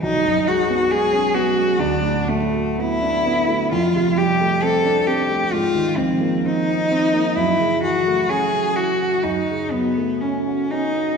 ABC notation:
X:1
M:4/4
L:1/16
Q:1/4=65
K:F#dor
V:1 name="Cello"
D2 F2 G2 F2 =D2 A,2 E4 | =F2 =G2 A2 G2 ^E2 ^B,2 D4 | E2 F2 G2 F2 D2 B,2 C2 D2 |]
V:2 name="Grand piano"
B,,, F,, G, B, G, C B, G, =D,, A,, F, A, B, =D B, A, | =F,, =C, =G, A, =C =D C A, ^G,, ^D, ^E, ^A, ^B, ^D B, A, | F,, C, E, A, C F E F F,, C, F, A, C F C F |]